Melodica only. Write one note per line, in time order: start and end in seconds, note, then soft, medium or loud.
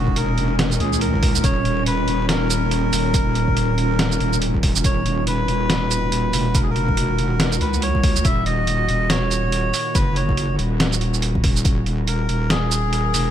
0.00 0.18 F#4 loud
0.17 0.56 A#4 loud
0.76 0.80 A#4 medium
0.80 1.00 G#4 loud
1.01 1.45 A#4 loud
1.44 1.83 C#5 loud
1.87 2.26 B4 loud
2.29 4.38 A#4 loud
4.85 5.24 C#5 loud
5.27 6.59 B4 loud
6.55 6.62 A#4 loud
6.63 6.70 G#4 medium
6.71 7.57 A#4 loud
7.61 7.83 B4 medium
7.83 8.26 C#5 loud
8.25 8.45 E5 loud
8.46 9.12 D#5 loud
9.10 9.97 C#5 loud
9.95 10.17 B4 loud
10.16 10.56 C#5 loud
12.08 12.52 A#4 loud
12.50 13.31 G#4 loud